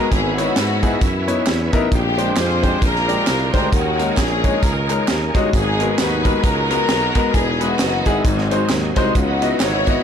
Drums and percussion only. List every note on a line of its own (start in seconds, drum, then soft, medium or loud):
0.12 kick loud
0.12 closed hi-hat medium
0.12 tambourine medium
0.38 closed hi-hat medium
0.38 tambourine soft
0.56 snare loud
0.56 clap medium
0.56 closed hi-hat loud
0.56 tambourine loud
0.83 kick medium
0.83 closed hi-hat medium
0.83 tambourine medium
1.01 kick loud
1.01 closed hi-hat medium
1.01 tambourine medium
1.28 closed hi-hat medium
1.28 tambourine soft
1.47 snare loud
1.47 clap medium
1.47 closed hi-hat medium
1.47 tambourine medium
1.73 kick medium
1.73 closed hi-hat medium
1.73 tambourine soft
1.92 kick loud
1.92 closed hi-hat medium
1.92 tambourine medium
2.18 closed hi-hat medium
2.18 tambourine soft
2.36 snare loud
2.36 clap medium
2.36 closed hi-hat medium
2.36 tambourine medium
2.63 kick medium
2.63 closed hi-hat medium
2.63 tambourine medium
2.82 kick loud
2.82 closed hi-hat medium
2.82 tambourine medium
2.96 snare soft
3.09 closed hi-hat medium
3.09 tambourine soft
3.27 snare loud
3.27 clap medium
3.27 closed hi-hat medium
3.27 tambourine medium
3.53 kick medium
3.53 snare soft
3.53 closed hi-hat medium
3.53 tambourine soft
3.73 kick loud
3.73 closed hi-hat medium
3.73 tambourine medium
3.99 closed hi-hat medium
3.99 tambourine medium
4.17 kick medium
4.17 snare loud
4.17 clap medium
4.17 closed hi-hat medium
4.17 tambourine medium
4.44 kick medium
4.44 closed hi-hat medium
4.44 tambourine medium
4.62 kick loud
4.62 closed hi-hat loud
4.62 tambourine medium
4.90 clap medium
4.90 closed hi-hat medium
4.90 tambourine medium
5.08 snare loud
5.08 clap medium
5.08 closed hi-hat medium
5.08 tambourine medium
5.34 kick medium
5.34 snare soft
5.34 closed hi-hat medium
5.34 tambourine soft
5.53 kick loud
5.53 closed hi-hat medium
5.53 tambourine medium
5.80 closed hi-hat medium
5.80 tambourine medium
5.98 snare loud
5.98 clap medium
5.98 closed hi-hat medium
5.98 tambourine loud
6.25 kick medium
6.25 closed hi-hat medium
6.25 tambourine medium
6.43 kick loud
6.43 closed hi-hat loud
6.43 tambourine medium
6.71 closed hi-hat medium
6.71 tambourine soft
6.89 snare loud
6.89 clap medium
6.89 closed hi-hat medium
6.89 tambourine medium
7.15 kick medium
7.15 closed hi-hat medium
7.15 tambourine soft
7.34 kick loud
7.34 closed hi-hat medium
7.34 tambourine medium
7.61 closed hi-hat medium
7.61 tambourine medium
7.79 snare loud
7.79 clap medium
7.79 closed hi-hat medium
7.79 tambourine medium
8.06 kick medium
8.06 closed hi-hat medium
8.06 tambourine medium
8.24 kick loud
8.24 closed hi-hat loud
8.24 tambourine medium
8.38 snare soft
8.51 closed hi-hat medium
8.51 tambourine soft
8.69 snare loud
8.69 clap medium
8.69 closed hi-hat medium
8.69 tambourine medium
8.96 kick medium
8.96 snare soft
8.96 closed hi-hat medium
8.96 tambourine soft
9.15 kick loud
9.15 closed hi-hat medium
9.15 tambourine medium
9.42 closed hi-hat medium
9.42 tambourine medium
9.60 snare loud
9.60 clap medium
9.60 closed hi-hat loud
9.60 tambourine medium
9.87 kick medium
9.87 closed hi-hat medium
9.87 tambourine medium